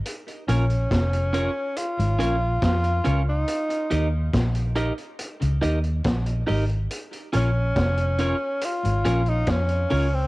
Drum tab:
HH |xxxxxxx-xxx-xxx-|xxx-xxxxxxxxxxox|xxx-xxx-xxxxxxo-|
SD |----o-------o---|----o-------o---|----o-------o---|
BD |----o-------o---|----o-------o---|----o-------o---|